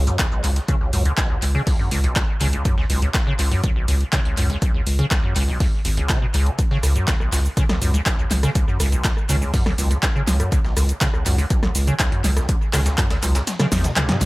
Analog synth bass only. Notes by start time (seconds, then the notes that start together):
Already playing: C#2
0.44 C#2
0.93 C#2
1.42 C#2
1.91 C#2
2.41 C#2
2.90 C#2
3.39 C#2
3.88 C#2
4.37 C#2
4.87 C#2
5.36 C#2
5.85 G#1
6.34 C#2
6.83 C#2
7.32 C#2
7.81 C#2
8.31 C#2
8.80 C#2
9.29 C#2
9.78 C#2
10.28 C#2
10.77 C#2
11.26 C#2
11.75 C#2
12.24 C#2
12.73 C#2
13.23 C#2
13.72 G#1
14.21 C#2